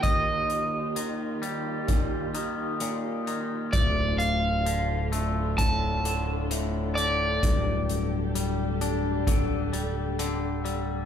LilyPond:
<<
  \new Staff \with { instrumentName = "Overdriven electric guitar" } { \time 4/4 \key d \phrygian \tempo 4 = 65 ees''2 r2 | d''8 f''4 r8 a''4. d''8~ | d''2. r4 | }
  \new Staff \with { instrumentName = "String section" } { \time 4/4 \key d \phrygian << { g'1 | a'1~ | a'1 | } \\ { <ees ees' f'>1 | <d d' f'>1 | <d d' g'>1 | } >> }
  \new Staff \with { instrumentName = "Clean electric guitar" } { \clef bass \time 4/4 \key d \phrygian <ees, bes, ees>4 ees8 g8 bes,8 ees8 bes,8 ees8 | d,4 d8 a8 a,8 d8 a,8 d8 | g,4 g8 d'8 d8 g8 d8 g8 | }
  \new Staff \with { instrumentName = "Picked electric bass" } { \clef bass \time 4/4 \key d \phrygian r1 | d,,1 | d,,1 | }
  \new DrumStaff \with { instrumentName = "Drums" } \drummode { \time 4/4 <hh bd>8 hh8 hh8 hh8 <hh bd>8 hh8 hh8 hh8 | <hh bd>8 hh8 hh8 hh8 <hh bd>8 hh8 hh8 hh8 | <hh bd>8 hh8 hh8 hh8 <hh bd>8 hh8 hh8 hh8 | }
>>